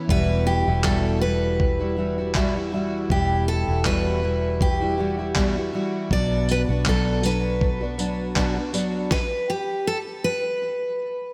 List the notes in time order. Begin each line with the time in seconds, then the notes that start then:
Already playing: B3 C#4
0.09 E1 E2 B2 E3 G3 E4 F#4 B4, kick
0.47 G4
0.67 E1 E3 G3 E4 F#4
0.84 E2 B2 E3 G3 E4 F#4 A4, kick, clap
1.21 E3 G3 E4 F#4 B4
1.60 kick
1.79 E3 G3 E4 F#4
1.97 E3 G3 E4 F#4
2.18 E3 G3 E4 F#4
2.35 E2 B2 E3 G3 E4 F#4, kick, clap
2.56 E3 G3 E4 F#4
2.72 E3 G3 E4 F#4
3.10 E1 E2 B2 E3 G3 E4 G4, kick
3.48 A4
3.68 E1 E3 G3 E4 F#4
3.85 E2 B2 E3 G3 E4 F#4 B4, kick, clap
4.22 E3 G3 E4 F#4
4.61 G4, kick
4.81 E3 G3 E4 F#4
4.97 E3 G3 E4 F#4
5.18 E3 G3 E4 F#4
5.35 E2 B2 E3 G3 E4 F#4, kick, clap
5.56 E3 G3 E4 F#4
5.72 E3 G3 E4 F#4
6.11 B1 B2 F#3 B3 D4 F#4 D5, kick
6.49 B4, tambourine
6.69 B1 B3 D4 F#4
6.86 B2 F#3 B3 D4 F#4 A4, kick, clap
7.22 F#3 B3 D4 F#4 B4, tambourine
7.61 kick
7.81 B3 D4 F#4
7.98 F#3 B3 D4 F#4, tambourine
8.35 B2 F#3 B3 D4 F#4, kick, clap
8.56 B3 D4 F#4
8.73 F#3 B3 D4 F#4, tambourine
9.11 B4, kick, snare
9.50 G4
9.87 A4
10.24 B4